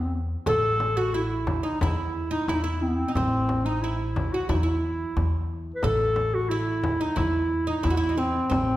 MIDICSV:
0, 0, Header, 1, 5, 480
1, 0, Start_track
1, 0, Tempo, 670391
1, 336, Time_signature, 4, 2, 24, 8
1, 6277, End_track
2, 0, Start_track
2, 0, Title_t, "Clarinet"
2, 0, Program_c, 0, 71
2, 29, Note_on_c, 0, 60, 56
2, 95, Note_off_c, 0, 60, 0
2, 345, Note_on_c, 0, 69, 99
2, 696, Note_on_c, 0, 66, 86
2, 707, Note_off_c, 0, 69, 0
2, 822, Note_on_c, 0, 64, 79
2, 833, Note_off_c, 0, 66, 0
2, 1179, Note_on_c, 0, 63, 78
2, 1190, Note_off_c, 0, 64, 0
2, 1292, Note_off_c, 0, 63, 0
2, 1296, Note_on_c, 0, 64, 81
2, 1662, Note_on_c, 0, 63, 80
2, 1673, Note_off_c, 0, 64, 0
2, 1773, Note_on_c, 0, 64, 80
2, 1784, Note_off_c, 0, 63, 0
2, 1822, Note_on_c, 0, 63, 69
2, 1833, Note_off_c, 0, 64, 0
2, 1878, Note_on_c, 0, 64, 78
2, 1889, Note_off_c, 0, 63, 0
2, 2018, Note_on_c, 0, 60, 71
2, 2029, Note_off_c, 0, 64, 0
2, 2059, Note_on_c, 0, 59, 61
2, 2070, Note_off_c, 0, 60, 0
2, 2111, Note_on_c, 0, 60, 74
2, 2122, Note_off_c, 0, 59, 0
2, 2244, Note_off_c, 0, 60, 0
2, 2248, Note_on_c, 0, 60, 84
2, 2615, Note_on_c, 0, 63, 73
2, 2626, Note_off_c, 0, 60, 0
2, 2730, Note_on_c, 0, 64, 75
2, 2741, Note_off_c, 0, 63, 0
2, 3099, Note_on_c, 0, 66, 74
2, 3110, Note_off_c, 0, 64, 0
2, 3219, Note_off_c, 0, 66, 0
2, 3222, Note_on_c, 0, 64, 62
2, 3261, Note_on_c, 0, 63, 57
2, 3271, Note_off_c, 0, 64, 0
2, 3320, Note_on_c, 0, 64, 75
2, 3331, Note_off_c, 0, 63, 0
2, 3939, Note_off_c, 0, 64, 0
2, 4120, Note_on_c, 0, 71, 61
2, 4182, Note_on_c, 0, 69, 96
2, 4193, Note_off_c, 0, 71, 0
2, 4539, Note_on_c, 0, 66, 82
2, 4550, Note_off_c, 0, 69, 0
2, 4650, Note_on_c, 0, 64, 82
2, 4661, Note_off_c, 0, 66, 0
2, 5021, Note_on_c, 0, 63, 77
2, 5032, Note_off_c, 0, 64, 0
2, 5138, Note_on_c, 0, 64, 88
2, 5149, Note_off_c, 0, 63, 0
2, 5497, Note_off_c, 0, 64, 0
2, 5503, Note_on_c, 0, 63, 75
2, 5630, Note_on_c, 0, 64, 86
2, 5641, Note_off_c, 0, 63, 0
2, 5854, Note_on_c, 0, 60, 77
2, 5865, Note_off_c, 0, 64, 0
2, 6092, Note_off_c, 0, 60, 0
2, 6096, Note_on_c, 0, 60, 84
2, 6277, Note_off_c, 0, 60, 0
2, 6277, End_track
3, 0, Start_track
3, 0, Title_t, "Oud"
3, 0, Program_c, 1, 24
3, 335, Note_on_c, 1, 69, 78
3, 690, Note_off_c, 1, 69, 0
3, 693, Note_on_c, 1, 66, 69
3, 816, Note_off_c, 1, 66, 0
3, 819, Note_on_c, 1, 64, 69
3, 1166, Note_off_c, 1, 64, 0
3, 1169, Note_on_c, 1, 63, 62
3, 1284, Note_off_c, 1, 63, 0
3, 1307, Note_on_c, 1, 64, 71
3, 1650, Note_off_c, 1, 64, 0
3, 1653, Note_on_c, 1, 63, 69
3, 1778, Note_off_c, 1, 63, 0
3, 1784, Note_on_c, 1, 64, 66
3, 1880, Note_off_c, 1, 64, 0
3, 1889, Note_on_c, 1, 64, 68
3, 2205, Note_off_c, 1, 64, 0
3, 2208, Note_on_c, 1, 63, 49
3, 2258, Note_off_c, 1, 63, 0
3, 2268, Note_on_c, 1, 60, 63
3, 2616, Note_off_c, 1, 60, 0
3, 2619, Note_on_c, 1, 63, 57
3, 2742, Note_off_c, 1, 63, 0
3, 2748, Note_on_c, 1, 64, 60
3, 3106, Note_off_c, 1, 64, 0
3, 3109, Note_on_c, 1, 66, 58
3, 3213, Note_off_c, 1, 66, 0
3, 3216, Note_on_c, 1, 64, 62
3, 3307, Note_off_c, 1, 64, 0
3, 3316, Note_on_c, 1, 64, 57
3, 3908, Note_off_c, 1, 64, 0
3, 4181, Note_on_c, 1, 69, 74
3, 4660, Note_off_c, 1, 69, 0
3, 4662, Note_on_c, 1, 64, 69
3, 5014, Note_off_c, 1, 64, 0
3, 5017, Note_on_c, 1, 63, 62
3, 5123, Note_off_c, 1, 63, 0
3, 5126, Note_on_c, 1, 64, 68
3, 5489, Note_off_c, 1, 64, 0
3, 5492, Note_on_c, 1, 63, 67
3, 5605, Note_off_c, 1, 63, 0
3, 5608, Note_on_c, 1, 64, 64
3, 5657, Note_off_c, 1, 64, 0
3, 5659, Note_on_c, 1, 66, 58
3, 5706, Note_off_c, 1, 66, 0
3, 5708, Note_on_c, 1, 64, 69
3, 5793, Note_on_c, 1, 63, 45
3, 5850, Note_off_c, 1, 63, 0
3, 5851, Note_off_c, 1, 64, 0
3, 5853, Note_on_c, 1, 60, 61
3, 6075, Note_off_c, 1, 60, 0
3, 6083, Note_on_c, 1, 60, 67
3, 6277, Note_off_c, 1, 60, 0
3, 6277, End_track
4, 0, Start_track
4, 0, Title_t, "Upright bass"
4, 0, Program_c, 2, 32
4, 0, Note_on_c, 2, 40, 82
4, 242, Note_off_c, 2, 40, 0
4, 337, Note_on_c, 2, 33, 89
4, 1108, Note_off_c, 2, 33, 0
4, 1300, Note_on_c, 2, 40, 81
4, 1684, Note_off_c, 2, 40, 0
4, 1775, Note_on_c, 2, 40, 75
4, 2161, Note_off_c, 2, 40, 0
4, 2257, Note_on_c, 2, 33, 87
4, 3028, Note_off_c, 2, 33, 0
4, 3215, Note_on_c, 2, 40, 77
4, 3601, Note_off_c, 2, 40, 0
4, 3698, Note_on_c, 2, 40, 79
4, 4083, Note_off_c, 2, 40, 0
4, 4175, Note_on_c, 2, 33, 80
4, 4946, Note_off_c, 2, 33, 0
4, 5141, Note_on_c, 2, 40, 78
4, 5524, Note_off_c, 2, 40, 0
4, 5617, Note_on_c, 2, 40, 78
4, 6001, Note_off_c, 2, 40, 0
4, 6094, Note_on_c, 2, 33, 89
4, 6277, Note_off_c, 2, 33, 0
4, 6277, End_track
5, 0, Start_track
5, 0, Title_t, "Frame drum"
5, 331, Note_on_c, 9, 64, 76
5, 403, Note_off_c, 9, 64, 0
5, 573, Note_on_c, 9, 64, 58
5, 645, Note_off_c, 9, 64, 0
5, 1052, Note_on_c, 9, 64, 72
5, 1123, Note_off_c, 9, 64, 0
5, 1297, Note_on_c, 9, 64, 79
5, 1369, Note_off_c, 9, 64, 0
5, 1779, Note_on_c, 9, 64, 63
5, 1851, Note_off_c, 9, 64, 0
5, 2259, Note_on_c, 9, 64, 77
5, 2330, Note_off_c, 9, 64, 0
5, 2498, Note_on_c, 9, 64, 60
5, 2570, Note_off_c, 9, 64, 0
5, 2980, Note_on_c, 9, 64, 72
5, 3052, Note_off_c, 9, 64, 0
5, 3217, Note_on_c, 9, 64, 72
5, 3289, Note_off_c, 9, 64, 0
5, 3700, Note_on_c, 9, 64, 59
5, 3771, Note_off_c, 9, 64, 0
5, 4172, Note_on_c, 9, 64, 77
5, 4243, Note_off_c, 9, 64, 0
5, 4411, Note_on_c, 9, 64, 58
5, 4482, Note_off_c, 9, 64, 0
5, 4894, Note_on_c, 9, 64, 75
5, 4965, Note_off_c, 9, 64, 0
5, 5132, Note_on_c, 9, 64, 79
5, 5204, Note_off_c, 9, 64, 0
5, 5613, Note_on_c, 9, 64, 60
5, 5685, Note_off_c, 9, 64, 0
5, 6095, Note_on_c, 9, 64, 76
5, 6167, Note_off_c, 9, 64, 0
5, 6277, End_track
0, 0, End_of_file